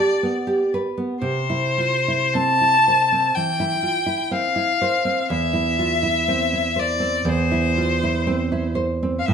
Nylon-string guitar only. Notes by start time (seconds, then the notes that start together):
Already playing: G4
0.23 B3
0.47 G4
0.74 B4
0.97 B3
1.22 C3
1.50 E4
1.78 F4
2.08 E4
2.35 C4
2.61 E4
2.88 C5
3.12 C4
3.37 E3
3.60 E4
3.83 F4
4.06 E4
4.31 C4
4.56 E4
4.81 C5
5.05 C4
5.30 E2
5.53 E4
5.79 F4
6.03 E4
6.28 C4
6.53 E4
6.76 C5
7.00 C4
7.25 E2
7.52 E4
7.77 F4
8.03 E4
8.27 C4
8.52 E4
8.75 C5
9.03 C4
9.28 A2